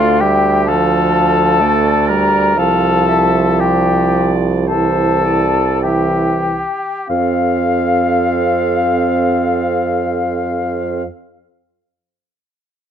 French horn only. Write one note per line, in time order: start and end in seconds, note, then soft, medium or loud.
0.00 0.23 A3 medium
0.22 0.68 G3 medium
0.70 1.63 F3 soft
1.61 2.11 A3 medium
2.09 2.56 G3 medium
2.57 4.64 F3 medium
4.68 5.46 E3 soft
5.84 6.63 E3 soft
7.10 11.04 C4 soft